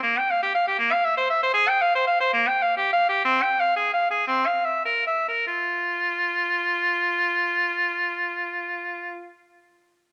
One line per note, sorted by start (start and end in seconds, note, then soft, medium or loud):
0.03 0.19 A#3 medium
0.18 0.32 G5 medium
0.30 0.42 F5 medium
0.43 0.54 G4 medium
0.55 0.66 F5 medium
0.67 0.78 G4 medium
0.79 0.94 A#3 medium
0.92 1.06 F5 medium
1.05 1.16 E5 medium
1.17 1.29 C5 medium
1.30 1.42 E5 medium
1.43 1.53 C5 medium
1.54 1.70 G#4 medium
1.68 1.83 G5 medium
1.82 1.94 F5 medium
1.95 2.06 C5 medium
2.07 2.20 F5 medium
2.20 2.32 C5 medium
2.33 2.49 A#3 medium
2.47 2.64 G5 medium
2.62 2.76 F5 medium
2.77 2.92 G4 medium
2.93 3.08 F5 medium
3.09 3.24 G4 medium
3.25 3.44 C4 medium
3.42 3.61 G5 medium
3.60 3.76 F5 medium
3.76 3.92 G#4 medium
3.93 4.09 F5 medium
4.11 4.27 G#4 medium
4.27 4.48 C4 medium
4.46 4.66 F5 medium
4.65 4.84 E5 medium
4.85 5.05 A#4 medium
5.07 5.27 E5 medium
5.28 5.47 A#4 medium
5.47 9.27 F4 medium